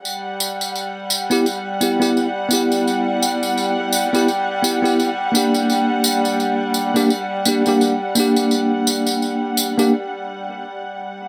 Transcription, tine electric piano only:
X:1
M:4/4
L:1/16
Q:"Swing 16ths" 1/4=85
K:Glyd
V:1 name="Tine electric piano"
z6 z [B,EG] z2 [B,EG] [B,EG]2 z [B,EG]2- | [B,EG]6- [B,EG] [B,EG] z2 [B,EG] [B,EG]2 z [^A,DG]2- | [^A,DG]6- [A,DG] [_B,DG] z2 [B,DG] [B,DG]2 z [B,DG]2- | [_B,DG]6- [B,DG] [B,DG] z8 |]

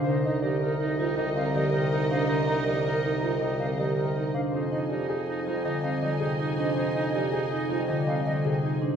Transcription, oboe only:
X:1
M:6/4
L:1/8
Q:1/4=161
K:Fdor
V:1 name="Oboe"
E E E E E E E E E E E E | E E E E E E E E E E E z | E E E E E E E E E E E E | E E E E E E E E E E E z |]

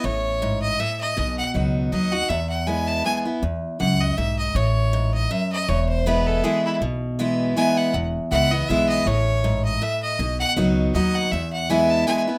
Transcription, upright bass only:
X:1
M:3/4
L:1/8
Q:"Swing" 1/4=160
K:E
V:1 name="Upright bass" clef=bass
A,,,6 | B,,,2 C,,2 D,,2 | E,,6 | E,,2 C,,2 B,,,2 |
A,,,6 | E,,,6 | B,,,6 | E,,,2 C,,2 B,,,2 |
A,,,6 | B,,,2 C,,2 D,,2 | E,,6 |]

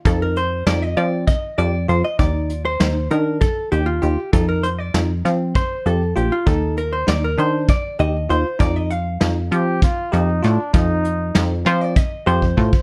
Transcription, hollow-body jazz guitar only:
X:1
M:7/8
L:1/16
Q:1/4=98
K:Fmix
V:1 name="Hollow-body jazz guitar"
A B c2 d e d2 e2 d2 c e | d3 c3 B2 A2 G F G2 | A B c d2 z3 c2 A2 G F | A2 B c d B c2 d2 e2 c2 |
d e f4 z8 | z6 c d e2 c4 |]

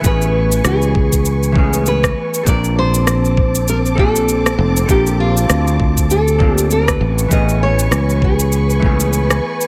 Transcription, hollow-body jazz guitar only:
X:1
M:4/4
L:1/8
Q:"Swing 16ths" 1/4=99
K:A
V:1 name="Hollow-body jazz guitar"
[E,A,B,CG]4- [E,A,B,CG] [E,A,B,CG]3 | [=CD=FA_B]4- [CDFAB] [_B,CDFA]3 | [=CD=FA_B]4- [CDFAB] [_B,CDFA]2 z | [E,A,B,CG]4- [E,A,B,CG] [E,A,B,CG]3 |]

